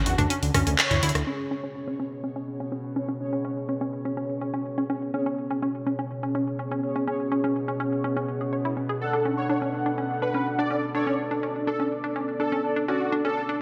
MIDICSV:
0, 0, Header, 1, 7, 480
1, 0, Start_track
1, 0, Tempo, 483871
1, 1259, Time_signature, 4, 2, 24, 8
1, 13510, End_track
2, 0, Start_track
2, 0, Title_t, "Analog synth lead"
2, 0, Program_c, 0, 81
2, 58, Note_on_c, 0, 66, 94
2, 212, Note_off_c, 0, 66, 0
2, 780, Note_on_c, 0, 73, 96
2, 1085, Note_off_c, 0, 73, 0
2, 8940, Note_on_c, 0, 69, 94
2, 9167, Note_off_c, 0, 69, 0
2, 9298, Note_on_c, 0, 73, 93
2, 9602, Note_off_c, 0, 73, 0
2, 10138, Note_on_c, 0, 71, 96
2, 10367, Note_off_c, 0, 71, 0
2, 10500, Note_on_c, 0, 74, 96
2, 10728, Note_off_c, 0, 74, 0
2, 10857, Note_on_c, 0, 73, 91
2, 11086, Note_off_c, 0, 73, 0
2, 11578, Note_on_c, 0, 69, 91
2, 11732, Note_off_c, 0, 69, 0
2, 12299, Note_on_c, 0, 69, 95
2, 12604, Note_off_c, 0, 69, 0
2, 12778, Note_on_c, 0, 66, 99
2, 13007, Note_off_c, 0, 66, 0
2, 13139, Note_on_c, 0, 69, 97
2, 13443, Note_off_c, 0, 69, 0
2, 13510, End_track
3, 0, Start_track
3, 0, Title_t, "Analog polysynth"
3, 0, Program_c, 1, 90
3, 1259, Note_on_c, 1, 73, 101
3, 1260, Note_on_c, 1, 61, 94
3, 1260, Note_on_c, 1, 68, 86
3, 2911, Note_off_c, 1, 61, 0
3, 2911, Note_off_c, 1, 68, 0
3, 2911, Note_off_c, 1, 73, 0
3, 2938, Note_on_c, 1, 61, 83
3, 2938, Note_on_c, 1, 68, 78
3, 2938, Note_on_c, 1, 73, 92
3, 3150, Note_off_c, 1, 61, 0
3, 3150, Note_off_c, 1, 68, 0
3, 3150, Note_off_c, 1, 73, 0
3, 3178, Note_on_c, 1, 61, 94
3, 3178, Note_on_c, 1, 68, 86
3, 3179, Note_on_c, 1, 73, 107
3, 4830, Note_off_c, 1, 61, 0
3, 4830, Note_off_c, 1, 68, 0
3, 4830, Note_off_c, 1, 73, 0
3, 4858, Note_on_c, 1, 61, 85
3, 4858, Note_on_c, 1, 68, 76
3, 4858, Note_on_c, 1, 73, 93
3, 5070, Note_off_c, 1, 61, 0
3, 5070, Note_off_c, 1, 68, 0
3, 5070, Note_off_c, 1, 73, 0
3, 5097, Note_on_c, 1, 61, 97
3, 5097, Note_on_c, 1, 68, 87
3, 5097, Note_on_c, 1, 73, 105
3, 6749, Note_off_c, 1, 61, 0
3, 6749, Note_off_c, 1, 73, 0
3, 6750, Note_off_c, 1, 68, 0
3, 6778, Note_on_c, 1, 73, 95
3, 6779, Note_on_c, 1, 61, 86
3, 6779, Note_on_c, 1, 68, 78
3, 6990, Note_off_c, 1, 61, 0
3, 6990, Note_off_c, 1, 73, 0
3, 6991, Note_off_c, 1, 68, 0
3, 7019, Note_on_c, 1, 61, 92
3, 7019, Note_on_c, 1, 68, 88
3, 7019, Note_on_c, 1, 73, 106
3, 8670, Note_off_c, 1, 68, 0
3, 8670, Note_off_c, 1, 73, 0
3, 8671, Note_off_c, 1, 61, 0
3, 8938, Note_on_c, 1, 62, 96
3, 8938, Note_on_c, 1, 69, 86
3, 8938, Note_on_c, 1, 78, 107
3, 10590, Note_off_c, 1, 62, 0
3, 10590, Note_off_c, 1, 69, 0
3, 10590, Note_off_c, 1, 78, 0
3, 10618, Note_on_c, 1, 62, 85
3, 10618, Note_on_c, 1, 69, 79
3, 10618, Note_on_c, 1, 74, 95
3, 10830, Note_off_c, 1, 62, 0
3, 10830, Note_off_c, 1, 69, 0
3, 10830, Note_off_c, 1, 74, 0
3, 10857, Note_on_c, 1, 62, 96
3, 10857, Note_on_c, 1, 69, 89
3, 10858, Note_on_c, 1, 74, 103
3, 12510, Note_off_c, 1, 62, 0
3, 12510, Note_off_c, 1, 69, 0
3, 12510, Note_off_c, 1, 74, 0
3, 12539, Note_on_c, 1, 62, 84
3, 12539, Note_on_c, 1, 69, 79
3, 12539, Note_on_c, 1, 74, 94
3, 12750, Note_off_c, 1, 62, 0
3, 12750, Note_off_c, 1, 69, 0
3, 12750, Note_off_c, 1, 74, 0
3, 12779, Note_on_c, 1, 74, 108
3, 12780, Note_on_c, 1, 62, 96
3, 12780, Note_on_c, 1, 69, 88
3, 13510, Note_off_c, 1, 62, 0
3, 13510, Note_off_c, 1, 69, 0
3, 13510, Note_off_c, 1, 74, 0
3, 13510, End_track
4, 0, Start_track
4, 0, Title_t, "Synth pluck"
4, 0, Program_c, 2, 84
4, 182, Note_on_c, 2, 62, 102
4, 257, Note_off_c, 2, 62, 0
4, 299, Note_on_c, 2, 61, 98
4, 346, Note_off_c, 2, 61, 0
4, 539, Note_on_c, 2, 61, 98
4, 650, Note_off_c, 2, 61, 0
4, 662, Note_on_c, 2, 61, 80
4, 773, Note_off_c, 2, 61, 0
4, 902, Note_on_c, 2, 64, 78
4, 978, Note_off_c, 2, 64, 0
4, 1020, Note_on_c, 2, 64, 101
4, 1098, Note_off_c, 2, 64, 0
4, 1259, Note_on_c, 2, 61, 97
4, 1306, Note_off_c, 2, 61, 0
4, 1499, Note_on_c, 2, 61, 101
4, 1578, Note_off_c, 2, 61, 0
4, 1622, Note_on_c, 2, 61, 100
4, 1667, Note_off_c, 2, 61, 0
4, 1862, Note_on_c, 2, 61, 95
4, 1937, Note_off_c, 2, 61, 0
4, 1980, Note_on_c, 2, 61, 97
4, 2027, Note_off_c, 2, 61, 0
4, 2219, Note_on_c, 2, 61, 94
4, 2298, Note_off_c, 2, 61, 0
4, 2341, Note_on_c, 2, 61, 97
4, 2387, Note_off_c, 2, 61, 0
4, 2581, Note_on_c, 2, 61, 99
4, 2657, Note_off_c, 2, 61, 0
4, 2699, Note_on_c, 2, 61, 94
4, 2746, Note_off_c, 2, 61, 0
4, 2939, Note_on_c, 2, 61, 98
4, 3018, Note_off_c, 2, 61, 0
4, 3061, Note_on_c, 2, 61, 97
4, 3106, Note_off_c, 2, 61, 0
4, 3301, Note_on_c, 2, 61, 99
4, 3377, Note_off_c, 2, 61, 0
4, 3419, Note_on_c, 2, 61, 99
4, 3466, Note_off_c, 2, 61, 0
4, 3658, Note_on_c, 2, 61, 100
4, 3737, Note_off_c, 2, 61, 0
4, 3782, Note_on_c, 2, 61, 99
4, 3827, Note_off_c, 2, 61, 0
4, 4021, Note_on_c, 2, 61, 98
4, 4097, Note_off_c, 2, 61, 0
4, 4139, Note_on_c, 2, 61, 92
4, 4186, Note_off_c, 2, 61, 0
4, 4379, Note_on_c, 2, 61, 97
4, 4458, Note_off_c, 2, 61, 0
4, 4501, Note_on_c, 2, 61, 98
4, 4546, Note_off_c, 2, 61, 0
4, 4741, Note_on_c, 2, 61, 99
4, 4817, Note_off_c, 2, 61, 0
4, 4859, Note_on_c, 2, 61, 99
4, 4906, Note_off_c, 2, 61, 0
4, 5099, Note_on_c, 2, 61, 102
4, 5178, Note_off_c, 2, 61, 0
4, 5221, Note_on_c, 2, 61, 99
4, 5267, Note_off_c, 2, 61, 0
4, 5461, Note_on_c, 2, 61, 101
4, 5537, Note_off_c, 2, 61, 0
4, 5580, Note_on_c, 2, 61, 101
4, 5627, Note_off_c, 2, 61, 0
4, 5819, Note_on_c, 2, 61, 99
4, 5898, Note_off_c, 2, 61, 0
4, 5941, Note_on_c, 2, 61, 95
4, 5987, Note_off_c, 2, 61, 0
4, 6181, Note_on_c, 2, 61, 101
4, 6257, Note_off_c, 2, 61, 0
4, 6299, Note_on_c, 2, 61, 97
4, 6346, Note_off_c, 2, 61, 0
4, 6539, Note_on_c, 2, 61, 95
4, 6618, Note_off_c, 2, 61, 0
4, 6661, Note_on_c, 2, 61, 99
4, 6707, Note_off_c, 2, 61, 0
4, 6901, Note_on_c, 2, 61, 100
4, 6977, Note_off_c, 2, 61, 0
4, 7019, Note_on_c, 2, 61, 98
4, 7066, Note_off_c, 2, 61, 0
4, 7258, Note_on_c, 2, 61, 99
4, 7338, Note_off_c, 2, 61, 0
4, 7381, Note_on_c, 2, 61, 102
4, 7427, Note_off_c, 2, 61, 0
4, 7621, Note_on_c, 2, 61, 98
4, 7697, Note_off_c, 2, 61, 0
4, 7738, Note_on_c, 2, 61, 103
4, 7786, Note_off_c, 2, 61, 0
4, 7979, Note_on_c, 2, 61, 95
4, 8058, Note_off_c, 2, 61, 0
4, 8101, Note_on_c, 2, 61, 102
4, 8147, Note_off_c, 2, 61, 0
4, 8342, Note_on_c, 2, 68, 77
4, 8387, Note_off_c, 2, 68, 0
4, 8459, Note_on_c, 2, 73, 81
4, 8506, Note_off_c, 2, 73, 0
4, 8581, Note_on_c, 2, 64, 101
4, 8657, Note_off_c, 2, 64, 0
4, 8699, Note_on_c, 2, 61, 74
4, 8746, Note_off_c, 2, 61, 0
4, 8822, Note_on_c, 2, 68, 99
4, 8933, Note_off_c, 2, 68, 0
4, 9061, Note_on_c, 2, 62, 101
4, 9137, Note_off_c, 2, 62, 0
4, 9178, Note_on_c, 2, 61, 100
4, 9226, Note_off_c, 2, 61, 0
4, 9419, Note_on_c, 2, 62, 103
4, 9498, Note_off_c, 2, 62, 0
4, 9541, Note_on_c, 2, 61, 98
4, 9587, Note_off_c, 2, 61, 0
4, 9782, Note_on_c, 2, 62, 94
4, 9857, Note_off_c, 2, 62, 0
4, 9899, Note_on_c, 2, 61, 94
4, 9946, Note_off_c, 2, 61, 0
4, 10139, Note_on_c, 2, 62, 96
4, 10218, Note_off_c, 2, 62, 0
4, 10261, Note_on_c, 2, 61, 101
4, 10306, Note_off_c, 2, 61, 0
4, 10502, Note_on_c, 2, 62, 103
4, 10578, Note_off_c, 2, 62, 0
4, 10619, Note_on_c, 2, 61, 102
4, 10666, Note_off_c, 2, 61, 0
4, 10859, Note_on_c, 2, 62, 100
4, 10938, Note_off_c, 2, 62, 0
4, 10980, Note_on_c, 2, 61, 101
4, 11026, Note_off_c, 2, 61, 0
4, 11221, Note_on_c, 2, 62, 99
4, 11297, Note_off_c, 2, 62, 0
4, 11340, Note_on_c, 2, 61, 100
4, 11387, Note_off_c, 2, 61, 0
4, 11580, Note_on_c, 2, 62, 102
4, 11659, Note_off_c, 2, 62, 0
4, 11702, Note_on_c, 2, 61, 95
4, 11747, Note_off_c, 2, 61, 0
4, 11942, Note_on_c, 2, 62, 101
4, 12018, Note_off_c, 2, 62, 0
4, 12060, Note_on_c, 2, 61, 98
4, 12107, Note_off_c, 2, 61, 0
4, 12299, Note_on_c, 2, 62, 96
4, 12378, Note_off_c, 2, 62, 0
4, 12422, Note_on_c, 2, 61, 100
4, 12467, Note_off_c, 2, 61, 0
4, 12662, Note_on_c, 2, 62, 99
4, 12737, Note_off_c, 2, 62, 0
4, 12780, Note_on_c, 2, 61, 98
4, 12827, Note_off_c, 2, 61, 0
4, 13020, Note_on_c, 2, 62, 100
4, 13098, Note_off_c, 2, 62, 0
4, 13142, Note_on_c, 2, 61, 101
4, 13187, Note_off_c, 2, 61, 0
4, 13382, Note_on_c, 2, 62, 98
4, 13457, Note_off_c, 2, 62, 0
4, 13510, End_track
5, 0, Start_track
5, 0, Title_t, "Synth drone"
5, 0, Program_c, 3, 95
5, 0, Note_on_c, 3, 49, 78
5, 1261, Note_on_c, 3, 47, 76
5, 1306, Note_off_c, 3, 49, 0
5, 13510, Note_off_c, 3, 47, 0
5, 13510, End_track
6, 0, Start_track
6, 0, Title_t, "Analog synth bass"
6, 0, Program_c, 4, 38
6, 60, Note_on_c, 4, 40, 99
6, 145, Note_off_c, 4, 40, 0
6, 182, Note_on_c, 4, 38, 91
6, 264, Note_off_c, 4, 38, 0
6, 422, Note_on_c, 4, 38, 87
6, 505, Note_off_c, 4, 38, 0
6, 540, Note_on_c, 4, 38, 101
6, 625, Note_off_c, 4, 38, 0
6, 661, Note_on_c, 4, 38, 92
6, 744, Note_off_c, 4, 38, 0
6, 900, Note_on_c, 4, 38, 86
6, 984, Note_off_c, 4, 38, 0
6, 1018, Note_on_c, 4, 38, 97
6, 1104, Note_off_c, 4, 38, 0
6, 1140, Note_on_c, 4, 38, 91
6, 1223, Note_off_c, 4, 38, 0
6, 13510, End_track
7, 0, Start_track
7, 0, Title_t, "Drums"
7, 60, Note_on_c, 9, 46, 102
7, 159, Note_off_c, 9, 46, 0
7, 183, Note_on_c, 9, 37, 51
7, 183, Note_on_c, 9, 42, 47
7, 183, Note_on_c, 9, 45, 88
7, 282, Note_off_c, 9, 37, 0
7, 282, Note_off_c, 9, 42, 0
7, 282, Note_off_c, 9, 45, 0
7, 300, Note_on_c, 9, 42, 72
7, 399, Note_off_c, 9, 42, 0
7, 423, Note_on_c, 9, 46, 60
7, 522, Note_off_c, 9, 46, 0
7, 541, Note_on_c, 9, 37, 75
7, 541, Note_on_c, 9, 45, 91
7, 541, Note_on_c, 9, 46, 101
7, 640, Note_off_c, 9, 37, 0
7, 640, Note_off_c, 9, 45, 0
7, 640, Note_off_c, 9, 46, 0
7, 663, Note_on_c, 9, 42, 47
7, 762, Note_off_c, 9, 42, 0
7, 780, Note_on_c, 9, 37, 51
7, 780, Note_on_c, 9, 39, 123
7, 780, Note_on_c, 9, 42, 72
7, 879, Note_off_c, 9, 37, 0
7, 879, Note_off_c, 9, 39, 0
7, 879, Note_off_c, 9, 42, 0
7, 902, Note_on_c, 9, 42, 47
7, 902, Note_on_c, 9, 45, 89
7, 1001, Note_off_c, 9, 42, 0
7, 1001, Note_off_c, 9, 45, 0
7, 1019, Note_on_c, 9, 46, 106
7, 1081, Note_on_c, 9, 42, 59
7, 1118, Note_off_c, 9, 46, 0
7, 1143, Note_off_c, 9, 42, 0
7, 1143, Note_on_c, 9, 37, 75
7, 1143, Note_on_c, 9, 42, 48
7, 1242, Note_off_c, 9, 37, 0
7, 1242, Note_off_c, 9, 42, 0
7, 13510, End_track
0, 0, End_of_file